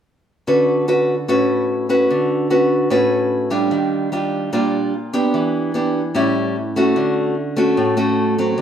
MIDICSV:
0, 0, Header, 1, 2, 480
1, 0, Start_track
1, 0, Key_signature, 2, "major"
1, 0, Tempo, 405680
1, 555, Time_signature, 4, 2, 24, 8
1, 10193, End_track
2, 0, Start_track
2, 0, Title_t, "Nylon-string guitar"
2, 0, Program_c, 0, 24
2, 559, Note_on_c, 0, 61, 47
2, 561, Note_on_c, 0, 50, 58
2, 564, Note_on_c, 0, 66, 49
2, 571, Note_on_c, 0, 71, 51
2, 998, Note_off_c, 0, 61, 0
2, 1001, Note_off_c, 0, 66, 0
2, 1005, Note_off_c, 0, 71, 0
2, 1038, Note_on_c, 0, 61, 45
2, 1043, Note_on_c, 0, 66, 51
2, 1050, Note_on_c, 0, 71, 60
2, 1347, Note_off_c, 0, 61, 0
2, 1348, Note_off_c, 0, 66, 0
2, 1349, Note_off_c, 0, 71, 0
2, 1495, Note_off_c, 0, 50, 0
2, 1519, Note_on_c, 0, 45, 68
2, 1523, Note_on_c, 0, 61, 55
2, 1524, Note_on_c, 0, 66, 52
2, 1531, Note_on_c, 0, 71, 65
2, 2201, Note_off_c, 0, 61, 0
2, 2202, Note_off_c, 0, 66, 0
2, 2205, Note_off_c, 0, 71, 0
2, 2238, Note_on_c, 0, 61, 50
2, 2243, Note_on_c, 0, 66, 57
2, 2249, Note_on_c, 0, 71, 60
2, 2454, Note_off_c, 0, 45, 0
2, 2491, Note_on_c, 0, 50, 59
2, 2919, Note_off_c, 0, 61, 0
2, 2922, Note_off_c, 0, 66, 0
2, 2922, Note_off_c, 0, 71, 0
2, 2961, Note_on_c, 0, 61, 48
2, 2965, Note_on_c, 0, 66, 54
2, 2971, Note_on_c, 0, 71, 48
2, 3401, Note_off_c, 0, 61, 0
2, 3403, Note_off_c, 0, 66, 0
2, 3403, Note_off_c, 0, 71, 0
2, 3420, Note_off_c, 0, 50, 0
2, 3436, Note_on_c, 0, 45, 72
2, 3443, Note_on_c, 0, 61, 51
2, 3446, Note_on_c, 0, 66, 48
2, 3450, Note_on_c, 0, 71, 66
2, 4121, Note_off_c, 0, 66, 0
2, 4123, Note_off_c, 0, 61, 0
2, 4125, Note_off_c, 0, 71, 0
2, 4146, Note_on_c, 0, 55, 54
2, 4151, Note_on_c, 0, 62, 55
2, 4159, Note_on_c, 0, 65, 60
2, 4372, Note_off_c, 0, 45, 0
2, 4390, Note_on_c, 0, 51, 61
2, 4833, Note_off_c, 0, 55, 0
2, 4836, Note_off_c, 0, 62, 0
2, 4838, Note_off_c, 0, 65, 0
2, 4874, Note_on_c, 0, 55, 43
2, 4882, Note_on_c, 0, 62, 49
2, 4889, Note_on_c, 0, 65, 47
2, 5317, Note_off_c, 0, 55, 0
2, 5322, Note_off_c, 0, 62, 0
2, 5323, Note_off_c, 0, 65, 0
2, 5329, Note_off_c, 0, 51, 0
2, 5355, Note_on_c, 0, 46, 66
2, 5357, Note_on_c, 0, 55, 55
2, 5360, Note_on_c, 0, 65, 60
2, 5363, Note_on_c, 0, 62, 57
2, 5833, Note_off_c, 0, 55, 0
2, 5833, Note_off_c, 0, 62, 0
2, 5835, Note_off_c, 0, 65, 0
2, 6074, Note_on_c, 0, 62, 59
2, 6077, Note_on_c, 0, 59, 60
2, 6083, Note_on_c, 0, 67, 59
2, 6293, Note_off_c, 0, 46, 0
2, 6317, Note_on_c, 0, 52, 61
2, 6756, Note_off_c, 0, 62, 0
2, 6758, Note_off_c, 0, 59, 0
2, 6761, Note_off_c, 0, 67, 0
2, 6793, Note_on_c, 0, 59, 47
2, 6803, Note_on_c, 0, 62, 51
2, 6807, Note_on_c, 0, 67, 57
2, 7104, Note_off_c, 0, 59, 0
2, 7106, Note_off_c, 0, 62, 0
2, 7110, Note_off_c, 0, 67, 0
2, 7252, Note_off_c, 0, 52, 0
2, 7271, Note_on_c, 0, 45, 73
2, 7275, Note_on_c, 0, 55, 52
2, 7281, Note_on_c, 0, 61, 59
2, 7286, Note_on_c, 0, 64, 59
2, 7753, Note_off_c, 0, 55, 0
2, 7755, Note_off_c, 0, 61, 0
2, 7758, Note_off_c, 0, 64, 0
2, 8001, Note_on_c, 0, 57, 55
2, 8010, Note_on_c, 0, 61, 58
2, 8015, Note_on_c, 0, 66, 58
2, 8209, Note_off_c, 0, 45, 0
2, 8236, Note_on_c, 0, 50, 64
2, 8679, Note_off_c, 0, 57, 0
2, 8685, Note_off_c, 0, 61, 0
2, 8685, Note_off_c, 0, 66, 0
2, 8951, Note_on_c, 0, 57, 56
2, 8959, Note_on_c, 0, 61, 54
2, 8968, Note_on_c, 0, 66, 66
2, 9171, Note_off_c, 0, 50, 0
2, 9196, Note_on_c, 0, 45, 68
2, 9395, Note_off_c, 0, 57, 0
2, 9397, Note_off_c, 0, 61, 0
2, 9403, Note_off_c, 0, 66, 0
2, 9428, Note_on_c, 0, 57, 55
2, 9435, Note_on_c, 0, 61, 61
2, 9437, Note_on_c, 0, 66, 63
2, 9873, Note_off_c, 0, 57, 0
2, 9875, Note_off_c, 0, 61, 0
2, 9877, Note_off_c, 0, 66, 0
2, 9921, Note_on_c, 0, 54, 54
2, 9927, Note_on_c, 0, 60, 53
2, 10131, Note_off_c, 0, 45, 0
2, 10148, Note_on_c, 0, 50, 62
2, 10193, Note_off_c, 0, 50, 0
2, 10193, Note_off_c, 0, 54, 0
2, 10193, Note_off_c, 0, 60, 0
2, 10193, End_track
0, 0, End_of_file